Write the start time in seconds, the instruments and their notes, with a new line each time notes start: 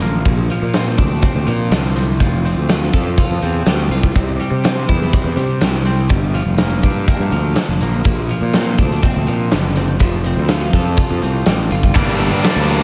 Already playing: clean electric guitar D3 F3 D4
0.01 fingered electric bass A1, clean electric guitar A#3, closed hi-hat
0.25 fingered electric bass A#1, clean electric guitar A#2, kick, closed hi-hat
0.50 clean electric guitar F3, closed hi-hat
0.62 fingered electric bass A#2
0.74 clean electric guitar C4, snare, closed hi-hat
0.98 fingered electric bass D2, clean electric guitar D4, kick, closed hi-hat
1.22 clean electric guitar C4, kick, closed hi-hat
1.35 fingered electric bass D2
1.47 fingered electric bass A#2, clean electric guitar F3, closed hi-hat
1.71 fingered electric bass C2, clean electric guitar D3, snare, closed hi-hat
1.96 clean electric guitar C4, closed hi-hat
2.20 fingered electric bass F1, clean electric guitar F3, kick, closed hi-hat
2.45 clean electric guitar C4, closed hi-hat
2.57 fingered electric bass D2
2.69 clean electric guitar F4, snare, closed hi-hat
2.93 fingered electric bass F2, clean electric guitar A4, kick, closed hi-hat
3.18 clean electric guitar F4, kick, closed hi-hat
3.30 fingered electric bass F2
3.42 fingered electric bass E2, clean electric guitar C4, closed hi-hat
3.66 fingered electric bass D2, clean electric guitar G3, snare, closed hi-hat
3.89 fingered electric bass C2, clean electric guitar F4, closed hi-hat
4.03 kick
4.15 fingered electric bass C2, clean electric guitar C3, kick, closed hi-hat
4.40 clean electric guitar G3, closed hi-hat
4.51 fingered electric bass C3
4.64 clean electric guitar C4, snare, closed hi-hat
4.89 fingered electric bass E2, clean electric guitar E4, kick, closed hi-hat
5.02 snare
5.13 clean electric guitar C4, kick, closed hi-hat
5.24 fingered electric bass E2
5.36 fingered electric bass C3, clean electric guitar G3, closed hi-hat
5.61 fingered electric bass C2, clean electric guitar C3, snare, closed hi-hat
5.85 clean electric guitar C4, closed hi-hat
6.09 fingered electric bass G1, clean electric guitar G2, kick, closed hi-hat
6.34 clean electric guitar F3, closed hi-hat
6.46 fingered electric bass F1
6.58 clean electric guitar A#3, snare, closed hi-hat
6.83 fingered electric bass G2, clean electric guitar D4, kick, closed hi-hat
7.08 clean electric guitar A#3, kick, closed hi-hat
7.19 fingered electric bass G2
7.31 fingered electric bass D2, clean electric guitar F3, closed hi-hat
7.56 clean electric guitar D3, snare, closed hi-hat
7.68 fingered electric bass F1
7.81 fingered electric bass A#1, clean electric guitar A#3, closed hi-hat
8.04 fingered electric bass A#1, clean electric guitar A#2, kick, closed hi-hat
8.29 clean electric guitar F3, closed hi-hat
8.41 fingered electric bass A#2
8.54 clean electric guitar C4, snare, closed hi-hat
8.78 fingered electric bass D2, clean electric guitar D4, kick, closed hi-hat
8.91 snare
9.03 clean electric guitar C4, kick, closed hi-hat
9.16 fingered electric bass D2
9.27 fingered electric bass A#2, clean electric guitar F3, closed hi-hat
9.51 fingered electric bass F#1, clean electric guitar D3, snare, closed hi-hat
9.76 clean electric guitar C4, closed hi-hat
10.00 fingered electric bass F1, clean electric guitar F3, kick, closed hi-hat
10.24 clean electric guitar C4, closed hi-hat
10.37 fingered electric bass D2
10.48 clean electric guitar F4, snare, closed hi-hat
10.73 fingered electric bass F2, clean electric guitar A4, kick, closed hi-hat
10.97 clean electric guitar F4, kick, closed hi-hat
11.11 fingered electric bass F2
11.22 fingered electric bass C2, clean electric guitar C4, closed hi-hat
11.46 fingered electric bass A1, clean electric guitar G3, snare, closed hi-hat
11.71 fingered electric bass G1, clean electric guitar F4, closed hi-hat
11.83 kick
11.94 fingered electric bass G1, overdriven electric guitar G2 D3 G3 A#3 D4, kick, open hi-hat
12.20 open hi-hat
12.31 fingered electric bass G2
12.43 overdriven electric guitar G2 D3 G3 A#3 D4, snare, open hi-hat
12.56 fingered electric bass D2
12.68 overdriven electric guitar G3 A#3 D4, open hi-hat